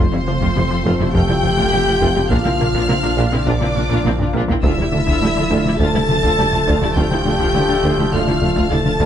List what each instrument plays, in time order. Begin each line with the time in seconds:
Already playing: sub bass F1, trombone section F3 A3, analog synth pad F3 F4 A4 F5, french horn section C4, violin section C5 C6
0.12 cello section F2, analog synth bass F2, viola section G3 E4, synth pluck F4, taiko mid
0.26 tuba F1, double bass section F1, cello section F2, analog synth bass F3, viola section A3 F4, synth pluck C4, taiko mid
0.41 cello section F2, analog synth bass F2, synth pluck F3, viola section A3 F4, taiko
0.55 tuba F1, double bass section F1, cello section F2, analog synth bass F3, viola section G3 E4, synth pluck C4, taiko mid
0.70 cello section F2, analog synth bass F3, viola section A3 F4, synth pluck C4
0.84 tuba F1, double bass section F1, cello section F2, analog synth bass F2, synth pluck F3, viola section A3 F4
0.99 cello section F2, analog synth bass F2, viola section G3 E4, synth pluck A3, taiko mid
1.12 tuba F1, double bass section F1, cello section F2, analog synth bass F2, synth pluck F3, viola section A3 F4, french horn section G4, violin section G5 G6, taiko
1.28 cello section F2, analog synth bass F2, viola section G3 E4, synth pluck F4, taiko mid
1.42 tuba F1, double bass section F1, cello section F2, analog synth bass F2, synth pluck A3, viola section A3 F4, taiko mid
1.57 cello section F2, analog synth bass F2, synth pluck F3, viola section A3 F4, taiko
1.71 tuba F1, double bass section F1, cello section F2, analog synth bass F2, viola section G3 E4, synth pluck F4, taiko mid
1.86 cello section F2, analog synth bass F2, viola section A3 F4, synth pluck A3, taiko mid
2.00 tuba F1, double bass section F1, cello section F2, analog synth bass F2, synth pluck F3, viola section A3 F4, taiko
2.15 cello section F2, analog synth bass F2, viola section G3 E4, synth pluck F4, taiko mid
2.30 sub bass A#1, tuba A#1, double bass section A#1, cello section A#2, analog synth bass A#2, synth pluck A#3, trombone section D4, viola section D4 F4, analog synth pad D4 F4, french horn section F4, violin section F5 F6, taiko
2.44 cello section A#2, analog synth bass A#2, viola section C4 E4, synth pluck A#4, taiko mid
2.59 tuba A#1, double bass section A#1, cello section A#2, analog synth bass A#3, viola section D4 F4, synth pluck F4, taiko mid
2.74 cello section A#2, analog synth bass A#2, synth pluck A#3, viola section D4 F4, taiko
2.88 tuba A#1, double bass section A#1, cello section A#2, analog synth bass A#3, viola section C4 E4, synth pluck F4, taiko mid
3.03 cello section A#2, analog synth bass A#3, viola section D4 F4, synth pluck F4
3.17 tuba A#1, double bass section A#1, analog synth bass A#2, cello section A#2, synth pluck A#3, viola section D4 F4
3.32 cello section A#2, analog synth bass A#2, viola section C4 E4, synth pluck D4, taiko mid
3.45 tuba A#1, double bass section A#1, analog synth bass A#2, cello section A#2, synth pluck A#3, french horn section D4, viola section D4 F4, violin section D5 D6, taiko
3.61 analog synth bass A#2, cello section A#2, viola section C4 E4, synth pluck A#4, taiko mid
3.75 double bass section A#1, tuba A#1, analog synth bass A#2, cello section A#2, synth pluck D4, viola section D4 F4, taiko mid
3.90 analog synth bass A#2, cello section A#2, synth pluck A#3, viola section D4 F4, taiko
4.04 tuba A#1, double bass section A#1, analog synth bass A#2, cello section A#2, viola section C4 E4, synth pluck A#4, taiko mid
4.18 analog synth bass A#2, cello section A#2, synth pluck D4, viola section D4 F4, taiko low-mid
4.33 tuba A#1, double bass section A#1, analog synth bass A#2, cello section A#2, synth pluck A#3, viola section D4 F4, taiko high
4.48 analog synth bass A#2, cello section A#2, viola section C4 E4, synth pluck A#4, taiko low
4.62 sub bass D1, tuba D2, analog synth bass D2, cello section D2, double bass section D2, synth pluck D3, analog synth pad F3 D4 A4 D5, trombone section F3 A3, french horn section E4, violin section E5 E6, taiko
4.66 viola section A3 F4
4.77 analog synth bass D2, cello section D2, synth pluck D4, taiko mid
4.81 viola section G3 E4
4.92 tuba D2, cello section D2, double bass section D2, analog synth bass D3, synth pluck A3, viola section A3 F4, taiko mid
5.06 analog synth bass D2, cello section D2, synth pluck D3, viola section A3 F4, taiko
5.21 tuba D2, cello section D2, double bass section D2, analog synth bass D3, viola section G3 E4, synth pluck A3, taiko mid
5.36 cello section D2, analog synth bass D3, synth pluck A3, viola section A3 F4
5.50 tuba D2, analog synth bass D2, cello section D2, double bass section D2, synth pluck D3, viola section A3 F4
5.65 analog synth bass D2, cello section D2, synth pluck F3, viola section G3 E4, taiko mid
5.78 analog synth bass D2, tuba D2, cello section D2, double bass section D2, synth pluck D3, french horn section A4, violin section A5 A6, taiko
5.82 viola section A3 F4
5.94 analog synth bass D2, cello section D2, viola section G3 E4, synth pluck D4, taiko mid
6.09 analog synth bass D2, tuba D2, double bass section D2, cello section D2, synth pluck F3, viola section A3 F4, taiko mid
6.23 analog synth bass D2, cello section D2, synth pluck D3, viola section A3 F4, taiko
6.38 tuba D2, cello section D2, analog synth bass D2, double bass section D2, viola section G3 E4, synth pluck D4, taiko mid
6.52 cello section D2, analog synth bass D2, synth pluck F3, viola section A3 F4, taiko mid
6.67 cello section D2, analog synth bass D2, tuba D2, double bass section D2, synth pluck D3, viola section A3 F4, taiko
6.81 analog synth bass D2, cello section D2, viola section G3 E4, synth pluck D4, taiko mid
6.96 analog synth bass D2, cello section D2, tuba D2, double bass section D2, synth pluck D3, viola section A3 F4, french horn section G4, violin section G5 G6, taiko
7.11 analog synth bass D2, cello section D2, viola section G3 E4, synth pluck D4, taiko mid
7.25 cello section D2, tuba D2, double bass section D2, analog synth bass D3, viola section A3 F4, synth pluck A3, taiko mid
7.40 analog synth bass D2, cello section D2, synth pluck D3, viola section A3 F4, taiko
7.54 cello section D2, tuba D2, double bass section D2, analog synth bass D3, viola section G3 E4, synth pluck A3, taiko mid
7.69 cello section D2, analog synth bass D3, synth pluck A3, viola section A3 F4
7.83 analog synth bass D2, cello section D2, tuba D2, double bass section D2, synth pluck D3, viola section A3 F4
7.97 analog synth bass D2, cello section D2, synth pluck F3, viola section G3 E4, taiko mid
8.12 analog synth bass D2, cello section D2, tuba D2, double bass section D2, synth pluck D3, viola section A3 F4, french horn section F4, violin section F5 F6, taiko
8.26 analog synth bass D2, cello section D2, viola section G3 E4, synth pluck D4, taiko mid
8.41 cello section D2, analog synth bass D2, tuba D2, double bass section D2, synth pluck F3, viola section A3 F4, taiko mid
8.56 analog synth bass D2, cello section D2, synth pluck D3, viola section A3 F4, taiko
8.70 cello section D2, tuba D2, analog synth bass D2, double bass section D2, viola section G3 E4, synth pluck D4, french horn section A4, violin section A5 A6, taiko mid
8.85 cello section D2, analog synth bass D2, synth pluck F3, viola section A3 F4, taiko mid
8.99 cello section D2, analog synth bass D2, double bass section D2, tuba D2, synth pluck D3, viola section A3 F4, taiko